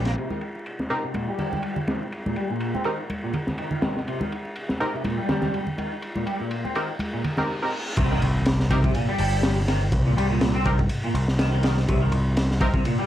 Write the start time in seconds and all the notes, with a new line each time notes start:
Already playing: A#1
0.05 A#3, snare, ride
0.17 C3, ride
0.30 D#3, high conga
0.41 ride
0.55 high bongo
0.66 ride
0.79 snare, high conga
0.90 C3 C4 D#4 G4 A#4, ride
1.03 C3
1.14 A#2, ride, high conga
1.28 G3
1.39 open hi-hat, high bongo, low conga
1.53 high bongo, high conga, low conga
1.63 ride
1.76 low conga
1.87 D#3, snare, ride, high conga
2.12 ride
2.26 A#2, high conga
2.36 G3, ride
2.50 A#2, high bongo
2.60 ride
2.74 C4, high conga
2.84 D#3 C4 D#4 G4 A#4, ride, high bongo
3.10 ride, high conga
3.23 A#2
3.34 ride, low conga
3.47 snare, high conga, low conga
3.58 D#3, ride
3.71 D#3, high bongo, low conga
3.82 D#3, snare, ride, high conga
3.97 snare
4.07 C3, ride
4.21 D#3, high conga
4.32 ride
4.45 high bongo
4.56 ride
4.69 snare, high conga
4.80 C3 C4 D#4 G4 A#4, ride
4.94 C3
5.04 A#2, ride, high conga
5.18 G3
5.29 snare, ride, high bongo, low conga
5.42 snare, high bongo, high conga, low conga
5.54 ride
5.67 low conga
5.78 D#3, ride, high conga
6.02 ride
6.15 A#2, high conga
6.26 G3, ride
6.40 A#2, high bongo
6.51 ride
6.64 C4, high conga
6.75 D#3 C4 D#4 G4 A#4, ride, high bongo
6.99 ride, reverse cymbal, high conga
7.13 A#2
7.24 ride, low conga
7.37 C4 D#4 G4 A#4, snare, high conga, low conga
7.62 C4 D#4 G4 A#4
7.97 C2 C3, kick, crash, ride, impact
8.11 D#3
8.22 C2, ride
8.46 snare, ride
8.60 snare
8.70 C3 C4 D#4 G4 A#4, kick, ride
8.84 C3, kick
8.95 A#2, ride
9.08 G3
9.18 G1, open hi-hat
9.43 snare, ride
9.68 D#3, snare, ride
9.92 C2, kick, ride
10.06 A#2
10.17 C2 G3, ride
10.30 A#2
10.41 snare, ride
10.55 C4
10.66 D#3 C4 D#4 G4 A#4, kick, ride
10.79 kick
10.89 ride
11.04 A#2
11.14 C2, ride
11.28 snare
11.39 D#3, snare, ride
11.53 D#3
11.63 D#3, snare, ride
11.77 snare
11.88 C2 C3, kick, ride
12.01 D#3
12.12 C2, ride
12.37 snare, ride
12.51 snare
12.60 C3 C4 D#4 G4 A#4, kick, ride
12.74 C3, kick
12.85 A#2, ride
12.99 G3